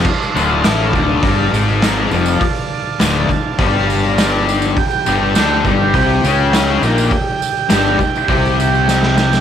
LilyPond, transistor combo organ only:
\new Staff \with { instrumentName = "Transistor combo organ" } { \time 4/4 \key d \minor \tempo 4 = 102 << { r1 | r2. f''16 a''16 c'''8 | r1 | r1 | } \\ { <d'' f'' a''>1~ | <d'' f'' a''>1 | <g' g''>1~ | <g' g''>1 | } >> }